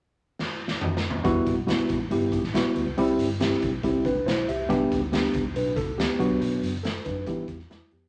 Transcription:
0.39 snare
0.68 snare
0.81 mid tom
0.97 snare
1.10 floor tom
1.24 E1 G3 B3 E4 F#4, kick, closed hi-hat
1.47 B1, kick, closed hi-hat
1.67 G3 B3 E4 F#4, snare, closed hi-hat
1.89 A1, kick, closed hi-hat
2.10 G1 G3 B3 E4 G4, closed hi-hat
2.32 kick, closed hi-hat
2.43 A1, snare
2.54 B1 G3 B3 E4 F#4, snare, closed hi-hat
2.76 D2, closed hi-hat
2.86 C#2
2.97 C2 G3 C4 E4 G4, closed hi-hat
3.18 G1, closed hi-hat
3.40 G3 C4 E4 G4, snare, closed hi-hat
3.53 snare
3.62 B1, kick, closed hi-hat
3.83 C2 G3 C4 E4 G4, kick, closed hi-hat
4.05 D4 B4, kick, closed hi-hat
4.15 C2
4.26 B1 E4 C5, snare, closed hi-hat
4.48 C2 G4 E5, closed hi-hat
4.69 B1 G3 B3 D4 G4, kick, closed hi-hat
4.91 D2, kick, closed hi-hat
5.12 G3 B3 D4 G4, snare, closed hi-hat
5.25 snare
5.34 C2, kick, closed hi-hat
5.54 B1 D4 B4, closed hi-hat
5.76 A4, kick, closed hi-hat
5.87 C2
5.97 D2 B3 G4, snare, closed hi-hat
6.19 B1 F#3 B3 D4 F#4, closed hi-hat
6.30 C2
6.41 B1, closed hi-hat
6.62 F#1, closed hi-hat
6.83 A4, snare, closed hi-hat
6.96 snare
7.05 F#2 D4 B4, kick, closed hi-hat
7.26 E3 G3 B3 E4 G4, kick, closed hi-hat
7.48 E2, kick, closed hi-hat
7.59 snare
7.70 E2 G3 E4, snare, closed hi-hat
7.91 F2 B3 G4, closed hi-hat

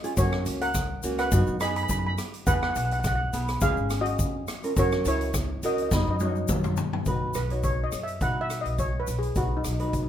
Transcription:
0.03 C#4 F4 G#4, closed hi-hat, shaker
0.17 F#2 A#3 C#4 F#4 C#5, kick, closed hi-hat, shaker
0.32 cross-stick
0.46 C#2, closed hi-hat, shaker
0.61 A#4 F#5, closed hi-hat
0.74 kick, cross-stick, closed hi-hat, shaker
1.03 C#2 A#3 C#4 F#4, closed hi-hat, shaker
1.18 B4 F#5, cross-stick, closed hi-hat, shaker
1.32 F#2 B3 D#4 F#4, kick, closed hi-hat, shaker
1.47 F#2, shaker
1.60 B3 D#4 G#4 D#5 B5, cross-stick, closed hi-hat, shaker
1.68 B5
1.76 B5, closed hi-hat
1.83 B5
1.89 F#2 B5, kick, closed hi-hat, shaker
1.99 B5
2.07 B5
2.18 cross-stick, closed hi-hat, shaker
2.34 closed hi-hat, shaker
2.47 E2 B3 E4 G#4 B4 F#5, kick, closed hi-hat, shaker
2.54 F#5
2.63 F#5, cross-stick
2.70 F#5
2.75 B1 F#5, closed hi-hat, shaker
2.85 F#5
2.91 F#5, closed hi-hat
3.00 F#5
3.04 F#5, kick, cross-stick, closed hi-hat, shaker
3.15 F#5
3.33 B1 B3 E4 G#4, closed hi-hat, shaker
3.48 cross-stick, closed hi-hat, shaker
3.61 C#2 C#4 G#4 F5, kick, closed hi-hat, shaker
3.77 G#1, shaker
3.90 cross-stick, closed hi-hat, shaker
4.01 F#4 D#5
4.06 closed hi-hat
4.19 F2, kick, closed hi-hat, shaker
4.48 cross-stick, closed hi-hat, shaker
4.63 C#4 F4 A#4, closed hi-hat, shaker
4.77 F#2 C#4 F#4 A#4 C#5, kick, closed hi-hat, shaker
4.92 cross-stick, shaker
5.05 C#2 E4 C#5, closed hi-hat, shaker
5.21 closed hi-hat
5.34 kick, cross-stick, closed hi-hat, shaker
5.63 C#2 C#4 F#4 A#4 D#5, closed hi-hat, shaker
5.74 D#5, closed hi-hat
5.78 D#5, shaker
5.89 F#2 D#4 F#4 B4 D#5, kick, snare, shaker
5.96 D#5
6.03 D#5
6.08 F#2 D#5
6.16 D#5, high tom, shaker
6.21 D#4 F#4 C#5
6.25 D#5
6.32 D#5, shaker
6.48 F#2, kick, mid tom, shaker
6.64 mid tom, shaker
6.77 floor tom, shaker
6.93 floor tom
7.06 B1 D#4 F#4 B4, kick, closed hi-hat, shaker
7.34 B1 B4, cross-stick, closed hi-hat, shaker
7.50 D#4 F#4 C#5, closed hi-hat
7.63 C#5, kick, closed hi-hat, shaker
7.84 D#5
7.92 F#2, cross-stick, closed hi-hat, shaker
8.03 E5
8.08 closed hi-hat, shaker
8.21 B2 D#4 F#4 B4 F#5, kick, closed hi-hat, shaker
8.41 E5
8.50 cross-stick, closed hi-hat, shaker
8.61 D#5
8.65 B1, closed hi-hat
8.79 C#5, kick, closed hi-hat, shaker
9.00 B4
9.07 B1, closed hi-hat, shaker
9.19 G#4, closed hi-hat, shaker
9.35 B1 D#4 F#4 B4, kick, closed hi-hat, shaker
9.57 D#4
9.64 B1 D#4, cross-stick, closed hi-hat, shaker
9.72 D#4
9.79 D#4 F#4 B4, closed hi-hat
9.88 D#4
9.93 D#4, kick, closed hi-hat, shaker
10.03 D#4

